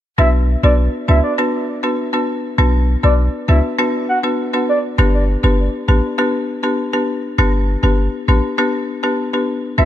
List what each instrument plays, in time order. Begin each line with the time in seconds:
0.18 808-style bass B1, marimba B3 D4 F#4 B4, soft synth lead E5
0.63 808-style bass B1, marimba B3 D4 F#4 B4, soft synth lead D5
1.08 808-style bass C#2, marimba B3 D4 F#4 B4, soft synth lead E5
1.24 soft synth lead D5
1.38 marimba B3 D4 F#4 B4
1.83 marimba B3 D4 F#4 B4
2.13 marimba B3 D4 F#4 B4
2.58 808-style bass B1, marimba B3 D4 F#4 B4
3.03 808-style bass B1, marimba B3 D4 F#4 B4, soft synth lead D5
3.48 808-style bass C#2, marimba B3 D4 F#4 B4, soft synth lead E5
3.79 marimba B3 D4 F#4 B4
4.09 soft synth lead F#5
4.23 marimba B3 D4 F#4 B4
4.53 marimba B3 D4 F#4 B4
4.69 soft synth lead D5
4.98 808-style bass G1, marimba B3 D4 G4 B4
5.43 808-style bass G1, marimba B3 D4 G4 B4
5.88 808-style bass A1, marimba B3 D4 G4 B4
6.18 marimba B3 D4 G4 B4
6.63 marimba B3 D4 G4 B4
6.93 marimba B3 D4 G4 B4
7.38 808-style bass G1, marimba B3 D4 G4 B4
7.83 808-style bass G1, marimba B3 D4 G4 B4
8.28 808-style bass A1, marimba B3 D4 G4 B4
8.58 marimba B3 D4 G4 B4
9.03 marimba B3 D4 G4 B4
9.33 marimba B3 D4 G4 B4
9.78 808-style bass B1, marimba B3 D4 F#4 B4, soft synth lead E5